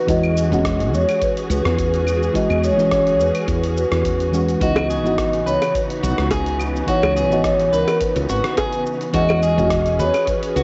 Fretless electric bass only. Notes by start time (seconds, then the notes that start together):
0.08 E2
0.52 E1
0.93 E2
1.50 C#2
1.65 E2
2.50 E2
2.78 E1
3.20 E2
3.48 E2
3.91 E2
4.61 C#2
5.05 G#1
5.46 C#2
6.03 B1
6.18 C#2
7.03 C#2
7.31 G#1
7.73 C#2
8.16 C#2
8.29 G#1
9.14 E2
9.58 E1
9.99 E2
10.56 C#2